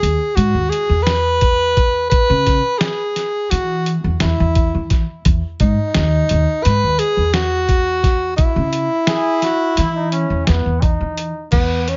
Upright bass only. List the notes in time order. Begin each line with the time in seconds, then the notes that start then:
0.03 D#2
0.37 G#2
0.54 D#2
0.89 E2
2.30 C#3
3.51 E3
4.04 E2
4.22 E2
4.40 E2
4.75 E3
5.26 E2
5.60 G#2
5.96 D#2
6.31 D#2
6.66 G#2
6.84 D#2
7.17 E2
8.56 C#3
9.78 E3
10.30 E2
10.49 E2
10.66 E2
11.00 E3
11.52 E2